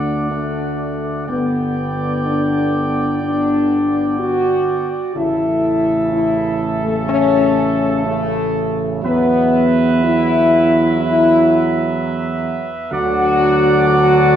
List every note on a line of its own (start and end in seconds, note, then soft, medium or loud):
0.00 1.24 D2 medium
0.00 1.25 D3 medium
0.00 1.25 A3 medium
0.00 0.26 D4 medium
0.00 1.24 D5 medium
0.00 1.24 F#5 medium
0.30 1.25 A3 medium
1.26 4.84 G1 medium
1.26 4.98 D3 medium
1.26 2.22 B3 medium
1.26 4.98 B3 medium
1.26 5.11 D5 medium
1.26 5.11 G5 medium
2.26 3.19 D4 medium
3.23 4.16 D4 loud
4.18 5.11 F#4 loud
5.15 8.99 A1 medium
5.15 8.99 C#3 medium
5.15 8.99 A3 medium
5.15 6.11 E4 loud
5.15 8.86 A4 medium
5.15 8.86 E5 medium
6.12 6.80 E4 loud
6.84 6.95 A3 medium
7.08 8.01 C#4 loud
8.05 8.99 A3 loud
9.02 12.61 E2 medium
9.02 12.73 F#3 medium
9.02 10.00 B3 loud
9.02 12.88 B4 medium
9.02 12.88 E5 medium
10.03 10.95 E4 loud
11.00 11.91 E4 loud
12.90 14.36 D2 medium
12.90 14.36 D3 medium
12.90 14.36 F#3 medium
12.90 13.85 F#4 loud
12.90 14.36 D5 medium
12.90 14.36 F#5 loud
13.87 14.36 F#4 loud